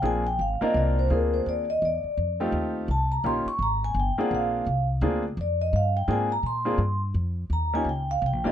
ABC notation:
X:1
M:3/4
L:1/8
Q:"Swing" 1/4=168
K:Bbmix
V:1 name="Vibraphone"
a g f e d c | B c d e d2- | d z3 =a b | c' _d' b a g _g |
f3 z3 | d e f g a b | c'3 z3 | b a g f g e |]
V:2 name="Grand piano"
[B,CDFA] z2 [B,CDFB]3 | [B,CDFA]3 z3 | z [=A,CEFG]3 z2 | [B,_DEFG] z4 [B,C=DFA]- |
[B,CDFA]2 z2 [B,CDFA] z | z4 [B,CDFA] z | z [B,CDFA] z4 | z [B,_DEFG] z3 [B,C=DFG] |]
V:3 name="Upright bass" clef=bass
B,,,2 A,,, z C,,2 | D,,2 E,,2 =E,, z | F,,2 E,,2 C,,2 | B,,, z A,,,2 G,,, z |
B,,,2 C,,2 D,,2 | F,,2 G,,2 A,,2 | B,,2 G,,2 F,,2 | E,,2 _D,,2 (3C,, B,,, G,,, |]